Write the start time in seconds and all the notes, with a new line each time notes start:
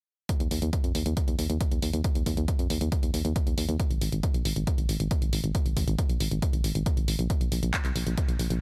0.29 kick, closed hi-hat
0.40 D#2, closed hi-hat
0.51 D#2, open hi-hat
0.62 D#2, closed hi-hat
0.73 kick, closed hi-hat
0.84 F2, closed hi-hat
0.95 D#2, open hi-hat
1.06 D#2, closed hi-hat
1.17 kick, closed hi-hat
1.28 D#2, closed hi-hat
1.39 D#2, open hi-hat
1.50 D#2, closed hi-hat
1.61 kick, closed hi-hat
1.72 D#2, closed hi-hat
1.82 D#2, open hi-hat
1.93 D#2, closed hi-hat
2.04 kick, closed hi-hat
2.15 D#2, closed hi-hat
2.26 D#2, kick, open hi-hat
2.37 D#2, closed hi-hat
2.48 kick, closed hi-hat
2.59 F2, closed hi-hat
2.70 D#2, open hi-hat
2.81 D#2, closed hi-hat
2.92 kick, closed hi-hat
3.03 D#2, closed hi-hat
3.14 D#2, open hi-hat
3.25 D#2, closed hi-hat
3.36 kick, closed hi-hat
3.47 D#2, closed hi-hat
3.58 D#2, open hi-hat
3.69 D#2, closed hi-hat
3.80 kick, closed hi-hat
3.91 G#1, closed hi-hat
4.01 G#1, open hi-hat
4.12 G#1, closed hi-hat
4.23 kick, closed hi-hat
4.34 A#1, closed hi-hat
4.45 G#1, open hi-hat
4.56 G#1, closed hi-hat
4.67 kick, closed hi-hat
4.78 G#1, closed hi-hat
4.89 G#1, open hi-hat
5.00 G#1, closed hi-hat
5.11 kick, closed hi-hat
5.22 G#1, closed hi-hat
5.33 G#1, open hi-hat
5.44 G#1, closed hi-hat
5.55 kick, closed hi-hat
5.66 G#1, closed hi-hat
5.77 G#1, kick, open hi-hat
5.88 G#1, closed hi-hat
5.99 kick, closed hi-hat
6.09 A#1, closed hi-hat
6.20 G#1, open hi-hat
6.31 G#1, closed hi-hat
6.42 kick, closed hi-hat
6.53 G#1, closed hi-hat
6.64 G#1, open hi-hat
6.75 G#1, closed hi-hat
6.86 kick, closed hi-hat
6.97 G#1, closed hi-hat
7.08 G#1, open hi-hat
7.19 A#1, closed hi-hat
7.30 kick, closed hi-hat
7.41 A#1, closed hi-hat
7.52 A#1, open hi-hat
7.63 A#1, closed hi-hat
7.74 kick, clap, closed hi-hat
7.85 C2, clap, closed hi-hat
7.96 A#1, open hi-hat
8.07 A#1, closed hi-hat
8.18 kick, closed hi-hat
8.28 A#1, closed hi-hat
8.39 A#1, open hi-hat
8.50 A#1, closed hi-hat